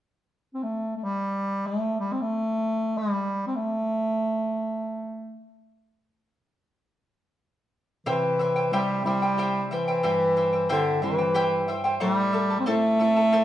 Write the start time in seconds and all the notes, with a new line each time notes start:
0.54 C4
0.63 A3
0.96 A3
1.04 G3
1.67 A3
2.00 G3
2.12 C4
2.21 A3
2.97 G3
3.47 C4
3.55 A3
8.06 C3 E3 E4 G4 C5 E5 G5
8.39 E4 C5 E5 G5
8.56 E4 C5 G5
8.71 G3 C4 E4 G4 C5 E5 G5
9.04 G3 C4 E4 C5 E5 G5
9.22 E4 C5 G5
9.38 E4 G4 C5 E5 G5
9.71 E3 E4 C5 E5 G5
9.88 E4 C5 G5
10.03 G2 E4 G4 C5 E5 G5
10.36 E4 C5 E5 G5
10.53 E4 C5 G5
10.69 D3 G3 C4 E4 G4 C5 E5 G5
11.02 E3 G3 C4 E4 C5 E5 G5
11.18 E4 C5 G5
11.34 E4 G4 C5 E5 G5
11.68 E4 C5 E5 G5
11.84 E4 C5 G5
12.00 A2 G3 E4 A4 C5 E5 A5
12.33 E4 A4 E5 A5
12.50 E4 A4 A5
12.59 C4
12.66 A3 C4 E4 A4 C5 E5 A5
13.00 A3 C4 E4 A4 E5 A5
13.16 E4 A4 A5
13.33 E4 A4 C5 E5 A5